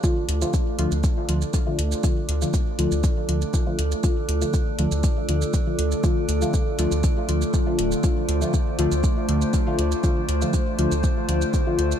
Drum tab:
HH |--x---x---x---x-|--x---x---x---x-|--x---x---x---x-|--x---x---x---x-|
SH |x--xx--xx--xx--x|x--xx--xx--xx--x|x--xx--xx--xx--x|x-xxx-xxx-xxx--x|
BD |o---o---o---o---|o---o---o---o---|o---o---o---o---|o---o---o---o---|

HH |--x---x---x---x-|--x---x---x---x-|
SH |x--xx--xx--xx--x|x--xx--xx--xx--x|
BD |o---o---o---o---|o---o---o---o---|